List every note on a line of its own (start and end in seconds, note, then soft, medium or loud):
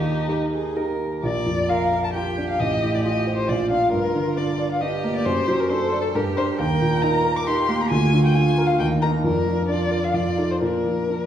0.00 0.27 D#2 soft
0.00 0.76 D#4 medium
0.00 0.24 G4 medium
0.28 0.72 D#4 soft
0.28 0.72 G4 soft
0.28 0.37 G4 medium
0.28 0.72 A#4 soft
0.53 0.78 G#4 medium
0.76 1.19 D#4 soft
0.76 1.19 G4 soft
0.76 1.24 A#4 soft
0.76 1.20 A#4 soft
1.23 2.55 A#1 medium
1.23 1.71 D5 medium
1.46 1.83 F2 soft
1.69 2.05 F4 soft
1.69 2.11 A#4 medium
1.69 2.03 F5 medium
1.92 2.28 A#4 soft
2.04 2.08 A5 medium
2.14 2.51 F4 soft
2.14 3.51 G4 medium
2.14 2.47 G5 medium
2.38 2.60 D4 soft
2.50 2.61 F5 medium
2.60 3.46 A1 medium
2.60 2.96 D#5 medium
2.82 3.18 A2 soft
2.95 3.04 D5 medium
3.04 3.40 F4 soft
3.04 3.34 D#5 medium
3.27 3.49 C5 soft
3.36 3.50 C5 medium
3.48 3.91 A#1 medium
3.48 4.82 F4 medium
3.48 3.70 D5 medium
3.71 3.90 D4 soft
3.71 3.91 D5 soft
3.71 3.92 F5 medium
3.93 5.22 G2 medium
3.93 4.39 A#4 medium
4.15 4.51 D3 soft
4.37 4.73 D4 soft
4.37 4.71 D5 medium
4.60 4.95 D5 soft
4.72 4.83 F5 medium
4.81 5.17 D4 soft
4.81 5.69 G4 medium
4.81 5.15 D#5 medium
5.04 5.26 A#3 soft
5.16 5.27 D5 medium
5.26 6.12 F#2 medium
5.26 5.62 C5 medium
5.48 5.83 F#3 soft
5.60 5.71 A#4 medium
5.70 6.06 D4 soft
5.70 6.17 A4 medium
5.70 6.00 C5 medium
5.93 6.14 D5 soft
6.01 6.07 A4 medium
6.15 6.57 G2 medium
6.15 6.60 G4 medium
6.15 6.23 A#4 medium
6.37 6.57 D4 soft
6.37 6.57 A#4 medium
6.37 6.45 C5 medium
6.59 7.87 D#2 medium
6.59 7.46 A#4 medium
6.59 7.03 G5 medium
6.81 7.16 A#2 soft
7.02 7.38 D#4 medium
7.02 7.38 A#5 medium
7.25 7.60 A#4 medium
7.36 7.48 D6 medium
7.46 7.82 D#4 medium
7.46 7.92 G4 medium
7.46 7.82 C6 medium
7.69 7.91 A#3 medium
7.81 7.90 A#5 medium
7.91 8.77 D2 medium
7.91 8.81 F4 medium
7.91 8.23 G#5 medium
8.13 8.49 D3 soft
8.26 8.37 G5 medium
8.35 8.71 F4 medium
8.35 8.69 G#5 medium
8.58 8.80 A#4 medium
8.67 8.79 F5 medium
8.80 9.23 D#2 medium
8.80 9.24 D#4 medium
8.80 8.88 G5 medium
9.02 9.22 D#4 soft
9.02 9.22 A#4 soft
9.02 9.10 A#5 medium
9.24 10.11 F2 medium
9.24 9.68 D4 medium
9.24 9.68 A#4 medium
9.46 9.82 F3 soft
9.69 10.05 D4 soft
9.69 10.14 F4 medium
9.69 10.06 D5 medium
9.91 10.14 A#4 soft
10.04 10.16 F5 medium
10.14 10.60 F2 soft
10.14 10.61 F4 soft
10.14 10.53 D5 medium
10.37 10.59 D#4 soft
10.37 10.59 A4 soft
10.51 10.62 C5 soft
10.61 11.26 A#2 soft
10.61 11.26 D4 soft
10.61 11.26 A#4 medium
10.85 11.23 F3 soft
11.09 11.26 D4 soft